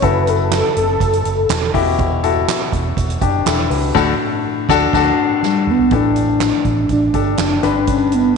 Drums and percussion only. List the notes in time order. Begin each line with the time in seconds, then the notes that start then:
0.02 kick, closed hi-hat
0.27 closed hi-hat
0.51 snare, clap, closed hi-hat
0.77 closed hi-hat
1.00 kick, closed hi-hat
1.13 closed hi-hat
1.25 closed hi-hat
1.49 snare, clap, closed hi-hat
1.74 kick, open hi-hat
1.99 kick, closed hi-hat
2.24 closed hi-hat
2.48 snare, clap, closed hi-hat
2.73 kick, closed hi-hat
2.97 kick, closed hi-hat
3.10 closed hi-hat
3.21 kick, closed hi-hat
3.46 snare, clap, closed hi-hat
3.71 open hi-hat
3.95 kick, snare, crash
4.69 kick, snare
4.93 kick, snare, crash
5.42 snare
5.67 mid tom
5.79 floor tom
5.91 kick, closed hi-hat
6.16 closed hi-hat
6.40 snare, clap, closed hi-hat
6.65 kick, closed hi-hat
6.89 kick, closed hi-hat
7.14 kick, closed hi-hat
7.37 snare, clap, closed hi-hat
7.63 snare, closed hi-hat
7.87 kick, closed hi-hat
8.12 closed hi-hat